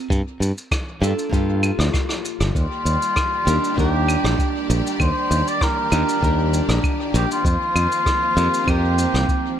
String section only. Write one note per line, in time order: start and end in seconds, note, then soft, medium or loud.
2.55 9.60 D#3 medium
2.55 7.41 G3 medium
2.55 9.60 A#3 medium
2.55 7.41 G4 medium
2.55 7.41 D5 medium
7.45 9.60 F3 medium
7.45 9.60 C4 medium
7.45 9.60 F4 medium